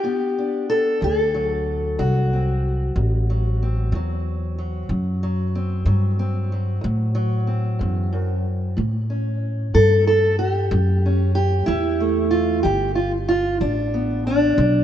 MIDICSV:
0, 0, Header, 1, 3, 480
1, 0, Start_track
1, 0, Tempo, 645856
1, 751, Time_signature, 12, 3, 24, 8
1, 11028, End_track
2, 0, Start_track
2, 0, Title_t, "Steel-string acoustic guitar"
2, 0, Program_c, 0, 25
2, 0, Note_on_c, 0, 62, 43
2, 0, Note_on_c, 0, 67, 95
2, 26, Note_on_c, 0, 43, 80
2, 33, Note_on_c, 0, 59, 46
2, 283, Note_off_c, 0, 62, 0
2, 286, Note_on_c, 0, 62, 50
2, 461, Note_off_c, 0, 43, 0
2, 514, Note_off_c, 0, 67, 0
2, 517, Note_on_c, 0, 69, 100
2, 724, Note_off_c, 0, 59, 0
2, 748, Note_on_c, 0, 38, 79
2, 754, Note_off_c, 0, 69, 0
2, 773, Note_on_c, 0, 69, 95
2, 999, Note_on_c, 0, 54, 52
2, 1182, Note_off_c, 0, 38, 0
2, 1477, Note_off_c, 0, 69, 0
2, 1477, Note_on_c, 0, 38, 75
2, 1480, Note_on_c, 0, 66, 97
2, 1730, Note_off_c, 0, 62, 0
2, 1733, Note_on_c, 0, 60, 40
2, 1907, Note_off_c, 0, 38, 0
2, 2201, Note_on_c, 0, 38, 73
2, 2437, Note_off_c, 0, 54, 0
2, 2451, Note_on_c, 0, 54, 52
2, 2630, Note_off_c, 0, 38, 0
2, 2684, Note_off_c, 0, 60, 0
2, 2694, Note_on_c, 0, 60, 46
2, 2918, Note_off_c, 0, 66, 0
2, 2923, Note_off_c, 0, 54, 0
2, 2928, Note_on_c, 0, 38, 74
2, 2936, Note_on_c, 0, 54, 46
2, 3353, Note_off_c, 0, 38, 0
2, 3399, Note_off_c, 0, 54, 0
2, 3408, Note_on_c, 0, 54, 48
2, 3616, Note_off_c, 0, 60, 0
2, 3642, Note_on_c, 0, 38, 69
2, 3878, Note_off_c, 0, 54, 0
2, 3887, Note_on_c, 0, 54, 60
2, 4071, Note_off_c, 0, 38, 0
2, 4128, Note_on_c, 0, 60, 65
2, 4354, Note_off_c, 0, 54, 0
2, 4354, Note_on_c, 0, 38, 74
2, 4363, Note_on_c, 0, 54, 62
2, 4593, Note_off_c, 0, 60, 0
2, 4602, Note_on_c, 0, 60, 56
2, 4787, Note_off_c, 0, 38, 0
2, 4839, Note_off_c, 0, 54, 0
2, 4847, Note_on_c, 0, 54, 57
2, 5063, Note_on_c, 0, 38, 74
2, 5303, Note_off_c, 0, 54, 0
2, 5312, Note_on_c, 0, 54, 63
2, 5502, Note_off_c, 0, 38, 0
2, 5544, Note_off_c, 0, 60, 0
2, 5553, Note_on_c, 0, 60, 49
2, 5790, Note_on_c, 0, 40, 68
2, 6033, Note_off_c, 0, 40, 0
2, 6039, Note_on_c, 0, 42, 67
2, 6277, Note_off_c, 0, 42, 0
2, 6486, Note_off_c, 0, 60, 0
2, 6514, Note_off_c, 0, 54, 0
2, 6515, Note_on_c, 0, 45, 79
2, 6762, Note_on_c, 0, 61, 42
2, 6948, Note_off_c, 0, 45, 0
2, 7239, Note_on_c, 0, 45, 74
2, 7243, Note_on_c, 0, 69, 108
2, 7479, Note_off_c, 0, 69, 0
2, 7487, Note_on_c, 0, 69, 92
2, 7669, Note_off_c, 0, 45, 0
2, 7717, Note_off_c, 0, 69, 0
2, 7720, Note_on_c, 0, 67, 88
2, 7967, Note_on_c, 0, 45, 73
2, 8199, Note_off_c, 0, 61, 0
2, 8218, Note_on_c, 0, 61, 49
2, 8393, Note_off_c, 0, 45, 0
2, 8427, Note_off_c, 0, 67, 0
2, 8436, Note_on_c, 0, 67, 108
2, 8663, Note_off_c, 0, 61, 0
2, 8666, Note_on_c, 0, 64, 109
2, 8678, Note_on_c, 0, 45, 76
2, 8921, Note_on_c, 0, 57, 48
2, 9109, Note_off_c, 0, 45, 0
2, 9144, Note_off_c, 0, 67, 0
2, 9147, Note_on_c, 0, 65, 93
2, 9369, Note_off_c, 0, 57, 0
2, 9383, Note_off_c, 0, 65, 0
2, 9386, Note_on_c, 0, 67, 93
2, 9387, Note_on_c, 0, 43, 77
2, 9390, Note_off_c, 0, 64, 0
2, 9624, Note_off_c, 0, 67, 0
2, 9627, Note_on_c, 0, 65, 79
2, 9746, Note_off_c, 0, 65, 0
2, 9823, Note_off_c, 0, 43, 0
2, 9874, Note_on_c, 0, 65, 104
2, 10112, Note_off_c, 0, 65, 0
2, 10115, Note_on_c, 0, 62, 78
2, 10116, Note_on_c, 0, 43, 71
2, 10360, Note_on_c, 0, 59, 43
2, 10547, Note_off_c, 0, 43, 0
2, 10594, Note_off_c, 0, 62, 0
2, 10604, Note_on_c, 0, 62, 93
2, 10843, Note_on_c, 0, 43, 78
2, 11028, Note_off_c, 0, 43, 0
2, 11028, Note_off_c, 0, 59, 0
2, 11028, Note_off_c, 0, 62, 0
2, 11028, End_track
3, 0, Start_track
3, 0, Title_t, "Upright bass"
3, 0, Program_c, 1, 32
3, 758, Note_on_c, 1, 38, 87
3, 1454, Note_off_c, 1, 38, 0
3, 1479, Note_on_c, 1, 36, 83
3, 2175, Note_off_c, 1, 36, 0
3, 2198, Note_on_c, 1, 33, 90
3, 2895, Note_off_c, 1, 33, 0
3, 2914, Note_on_c, 1, 40, 83
3, 3613, Note_off_c, 1, 40, 0
3, 3636, Note_on_c, 1, 42, 85
3, 4334, Note_off_c, 1, 42, 0
3, 4352, Note_on_c, 1, 43, 87
3, 5052, Note_off_c, 1, 43, 0
3, 5084, Note_on_c, 1, 45, 92
3, 5779, Note_off_c, 1, 45, 0
3, 5803, Note_on_c, 1, 42, 81
3, 6498, Note_off_c, 1, 42, 0
3, 6523, Note_on_c, 1, 45, 84
3, 7218, Note_off_c, 1, 45, 0
3, 7244, Note_on_c, 1, 43, 81
3, 7938, Note_off_c, 1, 43, 0
3, 7961, Note_on_c, 1, 42, 99
3, 8656, Note_off_c, 1, 42, 0
3, 8679, Note_on_c, 1, 40, 88
3, 9375, Note_off_c, 1, 40, 0
3, 9400, Note_on_c, 1, 31, 86
3, 10095, Note_off_c, 1, 31, 0
3, 10113, Note_on_c, 1, 33, 79
3, 10811, Note_off_c, 1, 33, 0
3, 10833, Note_on_c, 1, 35, 93
3, 11028, Note_off_c, 1, 35, 0
3, 11028, End_track
0, 0, End_of_file